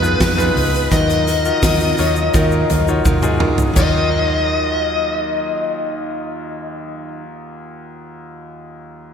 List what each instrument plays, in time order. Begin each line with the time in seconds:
Already playing: fingered electric bass F2, steel-string acoustic guitar B3 D#4 B4, grand piano B3 D#4 F4 G#4 B4, lead electric guitar B4
0.02 grand piano D#4 F4 G#4 B4, shaker
0.20 fingered electric bass F2, steel-string acoustic guitar G#3 B3 D#4 B4, kick, snare, hi-hat pedal, open hi-hat, shaker
0.38 grand piano D#4 F4 G#4 B4, floor tom, shaker
0.55 fingered electric bass C#2, steel-string acoustic guitar B3 D#4 B4, hi-hat pedal, open hi-hat
0.73 open hi-hat, shaker
0.91 fingered electric bass D#2, steel-string acoustic guitar D#3 F#3 D#4 F4 A#4, grand piano D#3 F#3 D#4 F4 A#4, lead electric guitar D#5, kick, hi-hat pedal, open hi-hat, shaker
1.09 hi-hat pedal, shaker
1.26 steel-string acoustic guitar D#4 F4 A#4, hi-hat pedal, open hi-hat, shaker
1.45 grand piano D#4 F4 F#4 A#4, shaker
1.62 fingered electric bass D#2, steel-string acoustic guitar F#3 D#4 F4 A#4, kick, snare, hi-hat pedal, open hi-hat, shaker
1.80 shaker
1.98 fingered electric bass D#2, grand piano F#3 D#4 F4 C#5, steel-string acoustic guitar D#4 F4 A#4, hi-hat pedal, open hi-hat, shaker
2.16 shaker
2.34 fingered electric bass D#2, steel-string acoustic guitar D#3 F#3 D#4 F4 A#4, grand piano F#3 D#4 F4 A#4, kick, hi-hat pedal, open hi-hat, shaker
2.51 shaker
2.69 fingered electric bass D#2, steel-string acoustic guitar D#4 F4 A#4, floor tom, hi-hat pedal, open hi-hat, shaker
2.88 grand piano D#4 F4 F#4 C#5, shaker
3.04 fingered electric bass D#2, steel-string acoustic guitar F#3 D#4 F4 A#4, kick, high tom, shaker
3.23 grand piano D#4 F4 F#4 G#4, mid tom, shaker
3.40 fingered electric bass C#2, steel-string acoustic guitar D#4 F4 A#4, mid tom
3.58 floor tom, shaker
3.73 fingered electric bass D#2, grand piano D#2 F#3 D#4, steel-string acoustic guitar D#3 F#3, lead electric guitar D#5, kick, crash, shaker
3.79 steel-string acoustic guitar D#4 F4, grand piano F4
3.85 steel-string acoustic guitar A#4